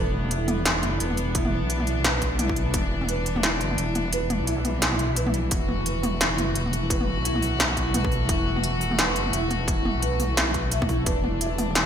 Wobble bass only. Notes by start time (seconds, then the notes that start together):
Already playing: E1
0.83 F#1
1.00 E1
1.62 B1
2.74 E1
3.61 F#1
3.78 E1
4.40 B1
5.52 E1
6.38 F#1
6.56 E1
7.18 B1
8.29 E1
9.15 F#1
9.33 E1
9.95 B1
11.06 E1